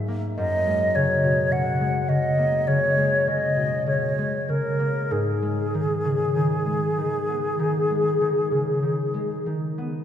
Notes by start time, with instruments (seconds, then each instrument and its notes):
Already playing: harp G#2 G#3
0.08 harp A#3
0.37 harp F#2, flute D#5
0.67 harp G#3
0.95 harp C#3, flute C#5
1.24 harp B2
1.52 harp C#3, flute F#5
1.81 harp G#3
2.09 harp C#3, flute D#5
2.38 harp A#3
2.67 harp C#3, flute C#5
2.97 harp G#3
3.27 harp C#3, flute D#5
3.57 harp B2
3.87 harp C#3, flute C#5
4.18 harp G#3
4.49 harp C#3, flute A#4
4.79 harp A#3
5.11 harp G#2, flute G#4
5.42 harp G#3
5.74 harp D#3
6.05 harp C#3
6.36 harp D#3
6.66 harp G#3
6.97 harp D#3
7.29 harp B3
7.59 harp D#3
7.90 harp G#3
8.21 harp D#3
8.51 harp C#3
8.83 harp D#3
9.14 harp G#3
9.46 harp D#3
9.78 harp B3